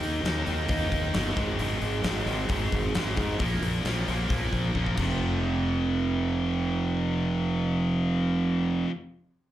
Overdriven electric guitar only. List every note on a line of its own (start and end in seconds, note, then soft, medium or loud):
0.00 0.24 D#3 medium
0.00 0.24 A#3 medium
0.00 0.25 D#4 medium
0.25 0.46 D#3 medium
0.25 0.47 A#3 medium
0.25 0.48 D#4 medium
0.47 0.69 D#3 medium
0.47 0.69 A#3 medium
0.47 0.69 D#4 medium
0.70 1.12 D#3 medium
0.70 1.12 A#3 medium
0.70 1.13 D#4 loud
1.14 1.35 D#3 medium
1.14 1.35 A#3 medium
1.14 1.35 D#4 medium
1.36 1.58 G#2 loud
1.36 1.58 D#3 loud
1.36 1.59 G#3 loud
1.59 2.03 G#2 medium
1.59 2.03 D#3 medium
1.59 2.03 G#3 medium
2.04 2.25 G#2 medium
2.04 2.26 D#3 medium
2.04 2.26 G#3 medium
2.27 2.48 G#2 medium
2.27 2.49 D#3 medium
2.27 2.49 G#3 medium
2.49 2.94 G#2 medium
2.49 2.95 D#3 medium
2.49 2.94 G#3 loud
2.95 3.17 G#2 medium
2.95 3.18 D#3 medium
2.95 3.18 G#3 medium
3.18 3.39 G#2 medium
3.18 3.39 D#3 medium
3.18 3.40 G#3 medium
3.41 3.85 A#2 medium
3.41 3.85 F3 medium
3.41 3.86 A#3 medium
3.86 4.08 A#2 medium
3.86 4.08 F3 medium
3.86 4.09 A#3 medium
4.09 4.30 A#2 medium
4.09 4.31 F3 medium
4.09 4.31 A#3 medium
4.31 4.74 A#2 medium
4.31 4.74 F3 medium
4.31 4.75 A#3 loud
4.75 4.98 A#2 medium
4.75 4.98 F3 medium
4.75 4.98 A#3 medium
4.97 8.87 F2 medium
4.97 8.90 C3 loud
4.97 8.91 F3 medium